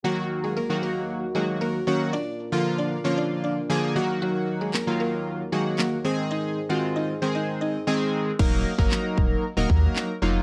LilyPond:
<<
  \new Staff \with { instrumentName = "Synth pluck" } { \time 4/4 \key ees \dorian \tempo 4 = 115 <ges ges'>8 r16 <aes aes'>16 <bes bes'>8 <bes bes'>16 r8. <aes aes'>16 r16 <bes bes'>16 r16 <des' des''>16 r16 | <d' d''>8 r16 <f' f''>16 r16 <d' d''>16 r16 <des' des''>16 <d' d''>8 <d' d''>16 r4 r16 | <ges ges'>8 r16 <aes aes'>16 <bes bes'>8 <bes bes'>16 r8. <aes aes'>16 r16 <bes bes'>16 r16 <c' c''>16 r16 | <ees' ees''>8 r16 <ges' ges''>16 r16 <ees' ees''>16 r16 <c' c''>16 <ees' ees''>8 <ees' ees''>16 r4 r16 |
r1 | }
  \new Staff \with { instrumentName = "Synth keys" } { \time 4/4 \key ees \dorian <ees ges bes ges'>4 r16 <ees ges bes ges'>4 r16 <ees ges bes ges'>8. r16 <ees ges bes ges'>8 | r8. <d f bes f'>8. r16 <d f bes f'>4 r16 <d f bes aes'>8 <ees ges bes ges'>8~ | <ees ges bes ges'>4 r16 <ees ges bes f'>4 r16 <ees ges bes ges'>8. r16 <ees aes c' aes'>8~ | <ees aes c' aes'>8 r16 <ees aes c' f'>8. r16 <ees aes c' aes'>4 r16 <ees aes c' aes'>8. r16 |
<ges bes ees' bes'>8. <ges bes ees' bes'>4~ <ges bes ees' bes'>16 r16 <ges bes ees' bes'>4 r16 <ges bes ees' f'>8 | }
  \new Staff \with { instrumentName = "French horn section" } { \clef bass \time 4/4 \key ees \dorian << { <ees, bes ges'>1 | <bes, d' f'>2.~ <bes, d' f'>8 <ees, ges>8~ | <ees, ges>2.~ <ees, ges>8 <aes, c' aes'>8~ | <aes, c' aes'>1 |
r1 | } \\ { ees1 | r2. r8 ees8~ | ees1~ | ees1 |
r1 | } >> }
  \new Staff \with { instrumentName = "Sub bass" } { \clef bass \time 4/4 \key ees \dorian r1 | r1 | r1 | r1 |
ees,,8. ges,,16 r8 ees,,8 r16 ees,,16 ees,8 r8 f,,8 | }
  \new DrumStaff \with { instrumentName = "Drums" } \drummode { \time 4/4 r4 r4 r4 r4 | r4 r4 r4 r4 | r4 <hc sn>4 r4 <hc sn>4 | r4 r4 r4 r4 |
<cymc bd>8. bd16 <hc sn>8 bd8 r8 bd8 <hc sn>4 | }
>>